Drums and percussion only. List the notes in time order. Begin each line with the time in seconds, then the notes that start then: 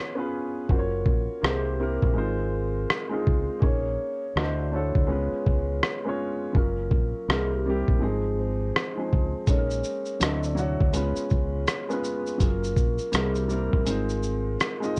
0.70 kick
1.06 kick
1.44 cross-stick
2.02 kick
2.90 cross-stick
3.27 kick
3.62 kick
4.37 cross-stick
4.95 kick
5.46 kick
5.83 cross-stick
6.55 kick
6.91 kick
7.30 cross-stick
7.88 kick
8.76 cross-stick
9.12 kick
9.47 kick, closed hi-hat, shaker
9.71 shaker
9.84 shaker
10.06 shaker
10.21 cross-stick, closed hi-hat, shaker
10.43 shaker
10.57 shaker
10.80 kick
10.94 closed hi-hat, shaker
11.16 shaker
11.30 kick, shaker
11.68 cross-stick, closed hi-hat, shaker
11.90 shaker
12.04 shaker
12.27 shaker
12.40 kick, closed hi-hat, shaker
12.64 shaker
12.76 kick, shaker
12.98 shaker
13.13 cross-stick, closed hi-hat, shaker
13.35 shaker
13.50 shaker
13.73 kick
13.86 closed hi-hat, shaker
14.09 shaker
14.23 shaker
14.60 cross-stick, closed hi-hat, shaker
14.83 shaker